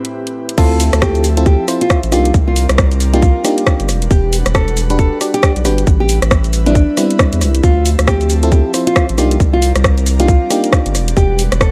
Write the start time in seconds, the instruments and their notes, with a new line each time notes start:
Already playing: analog synth pad A2 C4 E4 G4 B4, nylon-string guitar C4
0.05 closed hi-hat
0.27 closed hi-hat
0.49 closed hi-hat
0.58 sub bass D2, analog synth pad F3 C4 A4 E5, fm electric piano C4 E4 F4 A4, nylon-string guitar F4, kick, crash, shaker
0.80 open hi-hat, shaker
0.93 sub bass D2, cross-stick, closed hi-hat, shaker
1.02 nylon-string guitar G4, kick, cross-stick, shaker
1.15 closed hi-hat, shaker
1.24 open hi-hat, shaker
1.37 fm electric piano C4 E4 F4 A4, closed hi-hat, shaker
1.46 nylon-string guitar G4, kick, shaker
1.68 fm electric piano C4 E4 F4 C5, cross-stick, open hi-hat, shaker
1.81 nylon-string guitar F4, closed hi-hat, shaker
1.90 kick, cross-stick, shaker
2.03 sub bass A1, closed hi-hat, shaker
2.12 sub bass C2, analog synth pad G3 C4 A#4 D5, fm electric piano A#3 D4 D#4 G4, nylon-string guitar F4, cross-stick, open hi-hat, shaker
2.25 closed hi-hat, shaker
2.34 sub bass C2, kick, shaker
2.48 nylon-string guitar F4
2.56 open hi-hat, shaker
2.69 sub bass C2, cross-stick, closed hi-hat, shaker
2.78 kick, cross-stick, shaker
2.92 closed hi-hat, shaker
3.00 open hi-hat, shaker
3.13 fm electric piano A#3 D4 D#4 G4, nylon-string guitar F4, closed hi-hat, shaker
3.22 kick, shaker
3.44 fm electric piano A#3 D4 D#4 G4, cross-stick, open hi-hat, shaker
3.58 closed hi-hat, shaker
3.67 kick, cross-stick, shaker
3.80 sub bass G1, closed hi-hat, shaker
3.89 sub bass E1, analog synth pad D4 B4 F#5, cross-stick, open hi-hat, shaker
4.02 closed hi-hat, shaker
4.11 sub bass E1, nylon-string guitar G4, kick, shaker
4.33 open hi-hat, shaker
4.46 sub bass E1, cross-stick, closed hi-hat, shaker
4.55 nylon-string guitar A4, kick, cross-stick, shaker
4.68 closed hi-hat, shaker
4.77 open hi-hat, shaker
4.90 fm electric piano D4 F#4 G4 B4, closed hi-hat, shaker
4.99 nylon-string guitar A4, kick, shaker
5.21 fm electric piano D4 F#4 G4 D5, cross-stick, open hi-hat, shaker
5.34 nylon-string guitar G4, closed hi-hat, shaker
5.43 kick, cross-stick, shaker
5.56 sub bass B1, closed hi-hat, shaker
5.65 sub bass G1, fm electric piano D4 F#4 G4 B4, nylon-string guitar G4, cross-stick, open hi-hat, shaker
5.78 closed hi-hat, shaker
5.87 sub bass A1, analog synth pad B4 E5, kick, shaker
6.00 nylon-string guitar G4
6.09 open hi-hat, shaker
6.22 sub bass A1, cross-stick, closed hi-hat, shaker
6.31 kick, cross-stick, shaker
6.44 closed hi-hat, shaker
6.53 open hi-hat, shaker
6.66 fm electric piano G3 B3 C4 E4, nylon-string guitar D4, closed hi-hat, shaker
6.75 kick, shaker
6.97 fm electric piano G3 B3 C4 E4, cross-stick, open hi-hat, shaker
7.11 closed hi-hat, shaker
7.19 kick, cross-stick, shaker
7.33 sub bass E2, closed hi-hat, shaker
7.41 sub bass C2, cross-stick, open hi-hat, shaker
7.55 closed hi-hat, shaker
7.63 sub bass D2, analog synth pad F3 C4 A4, nylon-string guitar F4, kick, shaker
7.86 open hi-hat, shaker
7.99 sub bass D2, cross-stick, closed hi-hat, shaker
8.08 nylon-string guitar G4, kick, cross-stick, shaker
8.21 closed hi-hat, shaker
8.30 open hi-hat, shaker
8.43 fm electric piano C4 E4 F4 A4, closed hi-hat, shaker
8.52 nylon-string guitar G4, kick, shaker
8.74 fm electric piano C4 E4 F4 C5, cross-stick, open hi-hat, shaker
8.87 nylon-string guitar F4, closed hi-hat, shaker
8.96 kick, cross-stick, shaker
9.09 sub bass A1, closed hi-hat, shaker
9.18 sub bass C2, analog synth pad G3 C4 A#4 D5, fm electric piano A#3 D4 D#4 G4, nylon-string guitar F4, cross-stick, open hi-hat, shaker
9.31 closed hi-hat, shaker
9.40 sub bass C2, kick, shaker
9.53 nylon-string guitar F4
9.62 open hi-hat, shaker
9.76 sub bass C2, cross-stick, closed hi-hat, shaker
9.84 kick, cross-stick, shaker
9.98 closed hi-hat, shaker
10.06 open hi-hat, shaker
10.20 fm electric piano A#3 D4 D#4 G4, nylon-string guitar F4, closed hi-hat, shaker
10.28 kick, shaker
10.50 fm electric piano A#3 D4 D#4 G4, cross-stick, open hi-hat, shaker
10.64 closed hi-hat, shaker
10.73 kick, cross-stick, shaker
10.86 sub bass G1, closed hi-hat, shaker
10.95 sub bass E1, analog synth pad B4 F#5, cross-stick, open hi-hat, shaker
11.08 closed hi-hat, shaker
11.17 sub bass E1, nylon-string guitar G4, kick, shaker
11.39 open hi-hat, shaker
11.52 sub bass E1, cross-stick, closed hi-hat, shaker
11.61 nylon-string guitar A4, kick, cross-stick, shaker